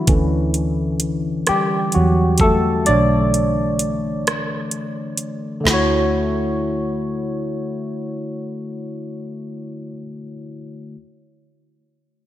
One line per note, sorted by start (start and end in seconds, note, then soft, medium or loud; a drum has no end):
0.07 1.43 D2 medium
0.07 2.83 D3 soft
0.07 2.83 E3 medium
0.07 2.83 C#4 soft
0.07 kick medium
0.07 closed hi-hat medium
0.54 closed hi-hat soft
1.00 closed hi-hat medium
1.47 1.92 G3 medium
1.47 1.96 G4 medium
1.47 muted fingered electric bass stroke soft
1.47 cross-stick medium
1.47 closed hi-hat medium
1.92 2.38 F#3 medium
1.92 2.42 F#4 medium
1.92 closed hi-hat soft
1.96 2.90 E2 medium
2.38 2.84 A4 medium
2.38 kick medium
2.38 closed hi-hat medium
2.43 2.85 A3 medium
2.86 5.63 B1 medium
2.86 3.49 D3 soft
2.86 3.49 E3 soft
2.86 3.49 A3 soft
2.86 4.70 D4 medium
2.86 3.49 C#5 soft
2.86 4.68 D5 medium
2.86 closed hi-hat medium
3.34 closed hi-hat soft
3.79 closed hi-hat medium
4.27 cross-stick medium
4.27 closed hi-hat soft
4.71 closed hi-hat soft
5.17 closed hi-hat medium
5.60 9.88 D3 medium
5.60 9.90 A3 medium
5.65 9.91 D2 medium
5.65 9.91 E4 medium
5.65 snare medium
5.65 floor tom medium
5.70 9.93 F#4 medium
5.70 9.94 C#5 medium